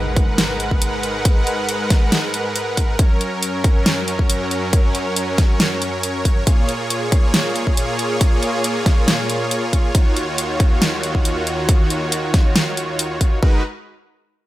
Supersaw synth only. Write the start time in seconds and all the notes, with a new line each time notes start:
Already playing: G#2 G#3 A#4 B4 F#5
2.99 F#2 F#3 C#4 C#5
6.47 A#2 A#3 F4 G#4
9.95 D#2 D#3
13.43 G#3 D#4 F#4 A#4 B4